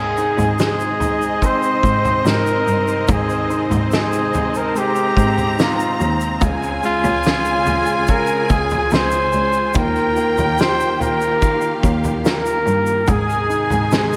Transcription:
Already playing: G#2 C3 C4 D#4 G#4 C5 D#5
0.17 D#4, shaker
0.37 G#2, floor tom, shaker
0.59 G#3 G#4, snare, shaker
0.80 shaker
1.00 D#4, floor tom, shaker
1.22 shaker
1.42 C4 C5, kick, shaker
1.63 shaker
1.83 G#2, kick, shaker
2.05 floor tom, shaker
2.25 G#2 D#4 A#4, snare, shaker
2.46 shaker
2.67 G2, shaker
2.88 shaker
3.08 G#2 D#3 G#4, kick, floor tom, shaker
3.29 shaker
3.50 D#4, shaker
3.70 G#2, floor tom, shaker
3.91 G#3 G#4, snare, shaker
4.13 shaker
4.33 D#4, floor tom, shaker
4.54 A#4, shaker
4.67 A5
4.75 G#3 G4 A#5, shaker
4.96 shaker
5.17 G#2, kick, shaker
5.38 floor tom, shaker
5.58 D#4 F4, snare, shaker
5.80 shaker
6.00 D#2, shaker
6.21 shaker
6.41 C#2 C#3 F4 G#4 G#5, kick, floor tom, shaker
6.63 shaker
6.83 G#3 F4, shaker
7.04 C#2, floor tom, shaker
7.23 C#3, snare, shaker
7.45 shaker
7.66 G#3, floor tom, shaker
7.86 shaker
8.07 C#3 A#4, kick, shaker
8.27 shaker
8.49 C#2 G#4, kick, shaker
8.70 floor tom, shaker
8.91 C#2 G#3 C5, snare, shaker
9.11 shaker
9.32 C#2, shaker
9.53 shaker
9.74 D#2 D#3 A#3 G4 A#4 G5, kick, floor tom, shaker
9.96 shaker
10.16 A#3, shaker
10.37 D#2, floor tom, shaker
10.58 G4 C5, snare, shaker
10.80 shaker
11.00 A#3 A#4, floor tom, shaker
11.21 shaker
11.41 D#3 F5, kick, shaker
11.61 shaker
11.83 D#2, kick, shaker
12.04 floor tom, shaker
12.25 A#3 A#4, snare, shaker
12.46 shaker
12.66 G2, shaker
12.87 shaker
13.07 G#2 C3 D#3 D#4 G#4 G#5, kick, floor tom, shaker
13.30 shaker
13.49 D#4, shaker
13.70 G#2, floor tom, shaker
13.91 G#3 G#4, snare, shaker
14.13 shaker

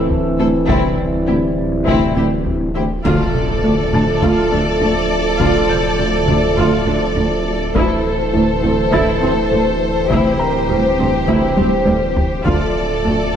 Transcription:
Already playing: D1 E3 A3 C4 E4 G5 E6 G6
0.10 taiko low
0.39 D2 C4 E4 A4 C5
0.68 D2 C3 G3 C4 E4 A6, taiko
0.99 taiko low
1.26 D2 C4 E4 G4
1.86 D2 C3 C4 E4, taiko
2.16 D2 C4 E4 G4 C5, taiko low
2.46 taiko low
2.75 D2 E3 E4 G4 C5
3.04 D1 D2 D3 F3 A3 F4 A4 D5, taiko, impact
3.34 taiko mid
3.64 D2 A3
3.93 D2 A3 D4 A5 A6, taiko mid
4.22 D2 D3 F4, taiko
4.51 D2 A3 D4
4.81 D2 A3 D4
5.39 D2 D3 F4, taiko
5.70 G6, taiko mid
5.99 D2 A3
6.28 D2 A3 D4, taiko mid
6.57 D2 D3 F4, taiko
6.86 D2 A3 D4
7.15 D2 A3 D4
7.75 D1 D2 E3 A3 E4 A4 C5, taiko
8.33 D2 A3 E4
8.63 D2 C4 E4
8.92 D2 A3 E4 A6, taiko
9.22 D2 C4 E4
9.51 D2 A3 A4
10.10 D2 C3 C4 E4 G4, taiko
10.39 A#4 A#5
10.69 D2 G3
10.99 D2 G3 C4
11.28 D2 C3 E4, taiko
11.58 D2 G3 C4, taiko high
11.87 D2 G3 C4, taiko high
12.16 taiko low
12.45 D1 D2 D3 F3 A3 F4 A4 D5, taiko
13.04 D2 A3

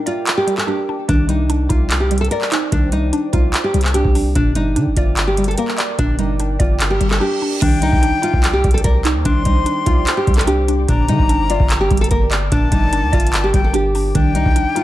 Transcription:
Already playing: A#2 G3 D4 A#4 D5 G5 D6
0.06 F4 D5, closed hi-hat
0.27 clap, closed hi-hat
0.37 G4
0.47 G3, closed hi-hat
0.58 A4, clap
0.67 D4 G4
0.89 D4
1.08 C2 D#3 D4 C5 D5, kick, closed hi-hat
1.29 G3 D#4, closed hi-hat
1.50 D4, closed hi-hat
1.69 C2 D#4 F4, kick, closed hi-hat
1.90 clap, closed hi-hat
2.00 G4
2.11 G3, closed hi-hat
2.18 A4, closed hi-hat
2.25 closed hi-hat
2.31 A#4 D5, closed hi-hat
2.41 clap
2.52 D#4, clap, closed hi-hat
2.72 C2 D#3 D4, kick, closed hi-hat
2.92 G3 D#4, closed hi-hat
3.13 D4, closed hi-hat
3.33 C2 D#4 F4, kick, closed hi-hat
3.54 clap, closed hi-hat
3.64 G4
3.74 C2 G3, closed hi-hat
3.81 A4, clap, closed hi-hat
3.88 closed hi-hat
3.94 D4 G4, closed hi-hat
4.05 C2, kick
4.15 D4, open hi-hat
4.35 G1 A#2 D4 A#4 D5 G5 D6, kick, closed hi-hat
4.55 G3 D#4, closed hi-hat
4.76 D3 D4, closed hi-hat
4.86 G1
4.97 G1 F4 D5, kick, closed hi-hat
5.17 clap, closed hi-hat
5.27 G4
5.37 G3, closed hi-hat
5.44 A4, closed hi-hat
5.51 closed hi-hat
5.58 A#3 A#4, closed hi-hat
5.68 clap
5.78 D5, clap, closed hi-hat
5.99 G1 A#2 D4, kick, closed hi-hat
6.19 G3 D#4, closed hi-hat
6.40 D4, closed hi-hat
6.59 G1 F4 D5, kick, closed hi-hat
6.80 clap, closed hi-hat, reverse cymbal
6.90 G4
7.00 G1 G3, closed hi-hat
7.11 A4, clap
7.20 D4 G4
7.42 D4
7.62 C2 D#3 D4 C5 D5 G5 D6, kick, closed hi-hat, crash
7.82 G3 D#4, closed hi-hat
7.93 C2, kick
8.03 D4, closed hi-hat
8.22 D#4 F4, closed hi-hat
8.33 C2, kick
8.44 clap, closed hi-hat
8.53 G4
8.64 C2 G3, kick, closed hi-hat
8.71 A4, closed hi-hat
8.78 closed hi-hat
8.84 C2 A#4 D5, kick, closed hi-hat
9.05 D#4, clap, closed hi-hat
9.15 D#2
9.25 C2 D#3 D4 C6, kick, closed hi-hat
9.45 C2 G3 D#4, kick, closed hi-hat
9.66 D4, closed hi-hat
9.86 C2 D#4 F4, kick, closed hi-hat
10.07 clap, closed hi-hat
10.17 G4
10.27 C2 G3, kick, closed hi-hat
10.34 A4, clap, closed hi-hat
10.41 closed hi-hat
10.47 D4 G4, closed hi-hat
10.68 D4, closed hi-hat
10.88 G1 A#2 D4 A#4 D5 A#5, kick, closed hi-hat
11.09 D3 G3 D#4, closed hi-hat
11.19 G1, kick
11.29 D4, closed hi-hat
11.50 F4 D5, closed hi-hat
11.60 G1, kick
11.70 clap, closed hi-hat
11.81 G4
11.91 G1 G3, kick, closed hi-hat
11.97 A4, closed hi-hat
12.04 closed hi-hat
12.11 G1 A#3 A#4, kick, closed hi-hat
12.31 D5, clap, closed hi-hat
12.52 G1 A#2 D4 A5, kick, closed hi-hat
12.72 G1 G3 D#4, kick, closed hi-hat
12.93 D4, closed hi-hat
13.03 D2
13.13 G1 F4 D5, kick, closed hi-hat
13.20 closed hi-hat
13.27 closed hi-hat
13.33 clap, closed hi-hat
13.44 G4
13.53 G1 G3 G5, kick, closed hi-hat
13.64 A4
13.73 D4 G4, closed hi-hat
13.95 D4, open hi-hat
14.15 C2 D#3 D4 C5 D5 G5, kick, closed hi-hat
14.35 G3 D#4, closed hi-hat
14.46 C2, kick
14.56 D4, closed hi-hat
14.75 D#4 F4, closed hi-hat

